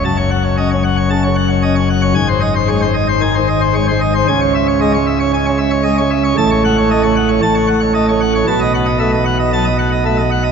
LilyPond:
<<
  \new Staff \with { instrumentName = "Pipe organ" } { \time 4/4 \key cis \minor \tempo 4 = 114 a''16 cis''16 fis''16 cis''16 dis''16 cis''16 fis''16 cis''16 a''16 cis''16 fis''16 cis''16 dis''16 cis''16 fis''16 cis''16 | gis''16 bis'16 dis''16 bis'16 cis''16 bis'16 dis''16 bis'16 gis''16 bis'16 dis''16 bis'16 cis''16 bis'16 dis''16 bis'16 | gis''16 cis''16 e''16 cis''16 dis''16 cis''16 e''16 cis''16 gis''16 cis''16 e''16 cis''16 dis''16 cis''16 e''16 cis''16 | \key fis \dorian a''16 cis''16 fis''16 cis''16 dis''16 cis''16 fis''16 cis''16 a''16 cis''16 fis''16 cis''16 dis''16 cis''16 fis''16 cis''16 |
a''16 dis''16 fis''16 dis''16 e''16 dis''16 fis''16 dis''16 a''16 dis''16 fis''16 dis''16 e''16 dis''16 fis''16 dis''16 | }
  \new Staff \with { instrumentName = "Pipe organ" } { \clef bass \time 4/4 \key cis \minor << { fis,4 cis'8 r8 cis8 r8 cis'8 r8 | gis,4 gis8 r8 dis8 r8 gis8 r8 | cis4 gis8 r8 cis'8 r8 gis8 r8 | \key fis \dorian a,4 a8 r8 a,4 a8 r8 |
b,4 a8 r8 fis8 r8 a8 r8 | } \\ { fis,,1 | gis,,1 | cis,1 | a,,2 a,,2 |
b,,1 | } >> }
>>